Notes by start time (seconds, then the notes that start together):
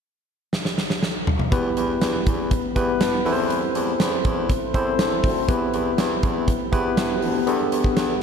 0.53 snare
0.65 snare
0.78 snare
0.90 snare
1.03 snare
1.27 mid tom
1.40 mid tom
1.51 E2 B3 E4 G4 B4, kick, closed hi-hat
1.77 E2, closed hi-hat
2.01 E2, snare, closed hi-hat
2.26 E2, kick, closed hi-hat
2.51 kick, closed hi-hat
2.75 E2 B3 E4 G4 B4, kick, closed hi-hat
3.01 G2, snare, closed hi-hat
3.25 E2 C4 E4 A4 B4, open hi-hat
3.32 C5
3.50 closed hi-hat
3.75 E2, closed hi-hat
4.00 E2, snare, closed hi-hat
4.25 E2, kick, closed hi-hat
4.50 kick, closed hi-hat
4.74 E2 C4 E4 A4 C5, kick, closed hi-hat
4.99 E2, snare, closed hi-hat
5.24 D2, kick, open hi-hat
5.48 E2 B3 E4 G4 B4, kick, closed hi-hat
5.74 E2, closed hi-hat
5.98 E2, snare, closed hi-hat
6.23 E2, kick, closed hi-hat
6.48 kick, closed hi-hat
6.72 E2 B3 E4 G4 B4, kick, closed hi-hat
6.97 G2, snare, closed hi-hat
7.22 D2, open hi-hat
7.47 E2 B3 D4 G4 A4, closed hi-hat
7.72 E2, closed hi-hat
7.84 kick
7.96 E2, snare, closed hi-hat